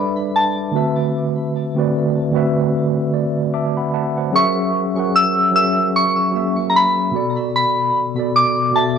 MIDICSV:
0, 0, Header, 1, 3, 480
1, 0, Start_track
1, 0, Tempo, 800000
1, 683, Time_signature, 4, 2, 24, 8
1, 5390, End_track
2, 0, Start_track
2, 0, Title_t, "Synth bell"
2, 0, Program_c, 0, 98
2, 0, Note_on_c, 0, 83, 89
2, 214, Note_on_c, 0, 81, 70
2, 223, Note_off_c, 0, 83, 0
2, 564, Note_off_c, 0, 81, 0
2, 2613, Note_on_c, 0, 85, 93
2, 3094, Note_on_c, 0, 88, 100
2, 3102, Note_off_c, 0, 85, 0
2, 3327, Note_off_c, 0, 88, 0
2, 3334, Note_on_c, 0, 88, 101
2, 3418, Note_off_c, 0, 88, 0
2, 3576, Note_on_c, 0, 85, 95
2, 3990, Note_off_c, 0, 85, 0
2, 4018, Note_on_c, 0, 82, 67
2, 4048, Note_off_c, 0, 82, 0
2, 4057, Note_on_c, 0, 83, 89
2, 4405, Note_off_c, 0, 83, 0
2, 4535, Note_on_c, 0, 83, 90
2, 4985, Note_off_c, 0, 83, 0
2, 5015, Note_on_c, 0, 86, 91
2, 5254, Note_on_c, 0, 81, 79
2, 5256, Note_off_c, 0, 86, 0
2, 5338, Note_off_c, 0, 81, 0
2, 5390, End_track
3, 0, Start_track
3, 0, Title_t, "Tine electric piano"
3, 0, Program_c, 1, 4
3, 0, Control_c, 1, 64, 127
3, 0, Note_on_c, 1, 55, 62
3, 0, Note_on_c, 1, 62, 60
3, 0, Note_on_c, 1, 69, 59
3, 0, Note_on_c, 1, 71, 55
3, 0, Note_on_c, 1, 74, 70
3, 0, Note_on_c, 1, 76, 81
3, 429, Note_on_c, 1, 50, 77
3, 433, Note_off_c, 1, 55, 0
3, 435, Note_on_c, 1, 57, 64
3, 437, Note_off_c, 1, 62, 0
3, 440, Note_on_c, 1, 60, 72
3, 441, Note_off_c, 1, 69, 0
3, 445, Note_off_c, 1, 71, 0
3, 447, Note_on_c, 1, 66, 72
3, 448, Note_off_c, 1, 74, 0
3, 450, Control_c, 1, 64, 0
3, 452, Note_off_c, 1, 76, 0
3, 452, Note_on_c, 1, 71, 67
3, 458, Note_on_c, 1, 76, 80
3, 568, Control_c, 1, 64, 127
3, 916, Note_off_c, 1, 50, 0
3, 919, Note_off_c, 1, 57, 0
3, 922, Note_off_c, 1, 60, 0
3, 925, Note_off_c, 1, 66, 0
3, 927, Note_off_c, 1, 71, 0
3, 931, Note_off_c, 1, 76, 0
3, 1047, Note_on_c, 1, 50, 78
3, 1053, Note_on_c, 1, 57, 72
3, 1059, Note_on_c, 1, 60, 77
3, 1065, Note_on_c, 1, 66, 70
3, 1071, Note_on_c, 1, 71, 75
3, 1077, Note_on_c, 1, 74, 88
3, 1293, Note_off_c, 1, 50, 0
3, 1296, Note_off_c, 1, 57, 0
3, 1299, Note_off_c, 1, 60, 0
3, 1302, Note_off_c, 1, 66, 0
3, 1305, Note_off_c, 1, 71, 0
3, 1308, Note_off_c, 1, 74, 0
3, 1388, Note_on_c, 1, 50, 87
3, 1394, Note_on_c, 1, 57, 81
3, 1399, Note_on_c, 1, 60, 81
3, 1406, Note_on_c, 1, 66, 78
3, 1411, Note_on_c, 1, 71, 80
3, 1417, Note_on_c, 1, 76, 97
3, 1883, Note_on_c, 1, 74, 67
3, 2045, Note_off_c, 1, 50, 0
3, 2048, Note_off_c, 1, 57, 0
3, 2051, Note_off_c, 1, 60, 0
3, 2054, Note_off_c, 1, 66, 0
3, 2057, Note_off_c, 1, 71, 0
3, 2060, Note_off_c, 1, 76, 0
3, 2106, Note_off_c, 1, 74, 0
3, 2123, Note_on_c, 1, 76, 70
3, 2123, Note_on_c, 1, 86, 63
3, 2127, Note_on_c, 1, 81, 54
3, 2255, Note_off_c, 1, 86, 0
3, 2257, Note_off_c, 1, 81, 0
3, 2263, Note_on_c, 1, 83, 68
3, 2266, Note_on_c, 1, 78, 56
3, 2346, Note_off_c, 1, 76, 0
3, 2356, Note_off_c, 1, 78, 0
3, 2358, Note_off_c, 1, 83, 0
3, 2363, Note_on_c, 1, 81, 67
3, 2364, Note_on_c, 1, 78, 65
3, 2367, Note_on_c, 1, 76, 61
3, 2495, Note_off_c, 1, 81, 0
3, 2496, Note_off_c, 1, 78, 0
3, 2497, Note_off_c, 1, 76, 0
3, 2503, Note_on_c, 1, 78, 63
3, 2506, Note_on_c, 1, 72, 54
3, 2588, Note_on_c, 1, 54, 93
3, 2595, Note_on_c, 1, 61, 87
3, 2602, Note_on_c, 1, 68, 86
3, 2610, Control_c, 1, 64, 0
3, 2610, Note_on_c, 1, 70, 85
3, 2617, Note_on_c, 1, 76, 98
3, 2726, Control_c, 1, 64, 127
3, 2731, Note_off_c, 1, 78, 0
3, 2732, Note_off_c, 1, 72, 0
3, 2834, Note_off_c, 1, 54, 0
3, 2838, Note_off_c, 1, 61, 0
3, 2841, Note_off_c, 1, 68, 0
3, 2845, Note_off_c, 1, 70, 0
3, 2849, Note_off_c, 1, 76, 0
3, 2967, Note_on_c, 1, 54, 69
3, 2975, Note_on_c, 1, 61, 63
3, 2983, Note_on_c, 1, 68, 67
3, 2990, Note_on_c, 1, 70, 61
3, 2997, Note_on_c, 1, 78, 75
3, 3213, Note_off_c, 1, 54, 0
3, 3217, Note_off_c, 1, 61, 0
3, 3221, Note_off_c, 1, 68, 0
3, 3224, Note_off_c, 1, 70, 0
3, 3228, Note_off_c, 1, 78, 0
3, 3308, Note_on_c, 1, 54, 72
3, 3315, Note_on_c, 1, 61, 63
3, 3323, Note_on_c, 1, 68, 67
3, 3330, Note_on_c, 1, 70, 63
3, 3337, Note_on_c, 1, 76, 77
3, 3646, Note_off_c, 1, 54, 0
3, 3650, Note_off_c, 1, 61, 0
3, 3653, Note_off_c, 1, 68, 0
3, 3657, Note_off_c, 1, 70, 0
3, 3661, Note_off_c, 1, 76, 0
3, 3788, Note_on_c, 1, 54, 62
3, 3795, Note_on_c, 1, 61, 60
3, 3802, Note_on_c, 1, 68, 54
3, 3810, Note_on_c, 1, 58, 60
3, 3817, Note_on_c, 1, 76, 70
3, 4268, Note_on_c, 1, 47, 71
3, 4273, Note_off_c, 1, 54, 0
3, 4275, Note_on_c, 1, 59, 72
3, 4277, Note_off_c, 1, 61, 0
3, 4280, Note_off_c, 1, 68, 0
3, 4283, Note_on_c, 1, 66, 69
3, 4284, Note_off_c, 1, 58, 0
3, 4288, Note_off_c, 1, 76, 0
3, 4290, Note_on_c, 1, 69, 68
3, 4291, Control_c, 1, 64, 0
3, 4297, Note_on_c, 1, 74, 84
3, 4383, Control_c, 1, 64, 127
3, 4755, Note_off_c, 1, 47, 0
3, 4759, Note_off_c, 1, 59, 0
3, 4763, Note_off_c, 1, 66, 0
3, 4766, Note_off_c, 1, 69, 0
3, 4770, Note_off_c, 1, 74, 0
3, 4887, Note_on_c, 1, 47, 67
3, 4894, Note_on_c, 1, 59, 66
3, 4902, Note_on_c, 1, 66, 61
3, 4909, Note_on_c, 1, 69, 60
3, 4917, Note_on_c, 1, 74, 79
3, 5133, Note_off_c, 1, 47, 0
3, 5137, Note_off_c, 1, 59, 0
3, 5140, Note_off_c, 1, 66, 0
3, 5144, Note_off_c, 1, 69, 0
3, 5148, Note_off_c, 1, 74, 0
3, 5227, Note_on_c, 1, 47, 68
3, 5235, Note_on_c, 1, 59, 66
3, 5242, Note_on_c, 1, 66, 67
3, 5249, Note_on_c, 1, 69, 66
3, 5257, Note_on_c, 1, 76, 82
3, 5390, Note_off_c, 1, 47, 0
3, 5390, Note_off_c, 1, 59, 0
3, 5390, Note_off_c, 1, 66, 0
3, 5390, Note_off_c, 1, 69, 0
3, 5390, Note_off_c, 1, 76, 0
3, 5390, End_track
0, 0, End_of_file